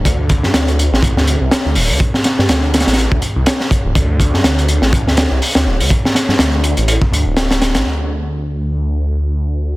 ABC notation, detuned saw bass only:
X:1
M:4/4
L:1/16
Q:"Swing 16ths" 1/4=123
K:C
V:1 name="Detuned saw bass" clef=bass
D,,3 G,, D,,3 A,,,2 D,,2 C,, z D,, D,,, D,, | z3 G,, D,,3 A,,,2 D,, z C,, z3 D,,, | D,,3 G,, D,,3 A,,,2 D,,2 C,, z D,, D,,, D,, | z3 G,, D,,3 A,,,2 z D,, D,,,4 A,,, |
D,,16 |]